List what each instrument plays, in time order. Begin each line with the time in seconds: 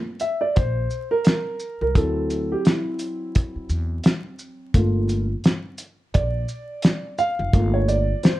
0.20 grand piano E5, closed hi-hat, shaker
0.41 grand piano D5
0.56 upright bass A#1, grand piano C5, kick, closed hi-hat
0.90 shaker
1.11 grand piano A#4
1.25 snare, closed hi-hat
1.60 shaker
1.81 upright bass C2, grand piano A#4
1.95 upright bass D2, grand piano F#3 C4 E4 A4, kick, closed hi-hat
2.30 closed hi-hat, shaker
2.52 grand piano G4
2.65 grand piano E4, snare, closed hi-hat
2.99 closed hi-hat, shaker
3.35 kick, closed hi-hat
3.56 muted upright bass stroke
3.69 upright bass E2, shaker
4.04 snare, closed hi-hat
4.39 shaker
4.74 upright bass G1, grand piano A3 A#3 F4, kick, closed hi-hat
5.09 closed hi-hat, shaker
5.44 snare, closed hi-hat
5.78 closed hi-hat, shaker
6.14 upright bass A#1, grand piano D5, kick, closed hi-hat
6.49 shaker
6.82 snare, closed hi-hat
7.18 grand piano F5, shaker
7.39 upright bass F1
7.53 upright bass G1, grand piano A3 A#3 F4, kick, closed hi-hat
7.74 grand piano C#5
7.88 grand piano D5, closed hi-hat, shaker
8.23 grand piano C5, snare, closed hi-hat